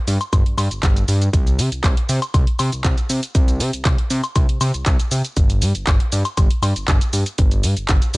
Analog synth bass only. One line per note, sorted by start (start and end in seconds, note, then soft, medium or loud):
0.08 0.18 G2 loud
0.33 0.44 G1 loud
0.58 0.69 G2 medium
0.71 0.81 G1 soft
0.83 1.04 G1 loud
1.08 1.29 G2 medium
1.34 1.60 C2 loud
1.59 1.70 C3 loud
1.72 1.82 C2 soft
1.84 1.95 C2 medium
2.09 2.20 C3 loud
2.34 2.45 C2 loud
2.60 2.70 C3 medium
2.73 2.83 C2 soft
2.85 2.96 C2 loud
3.10 3.21 C3 medium
3.35 3.61 C2 loud
3.60 3.71 C3 loud
3.73 3.83 C2 soft
3.85 3.96 C2 medium
4.11 4.21 C3 loud
4.36 4.47 C2 loud
4.61 4.72 C3 medium
4.74 4.84 C2 soft
4.87 4.97 C2 loud
5.12 5.22 C3 medium
5.37 5.64 G1 loud
5.62 5.73 G2 loud
5.75 5.85 G1 soft
5.87 5.98 G1 medium
6.13 6.23 G2 loud
6.38 6.49 G1 loud
6.62 6.73 G2 loud
6.76 6.86 G1 soft
6.88 6.99 G1 loud
7.13 7.24 G2 medium
7.39 7.65 G1 loud
7.64 7.75 G2 loud
7.77 7.87 G1 soft
7.89 8.00 G1 medium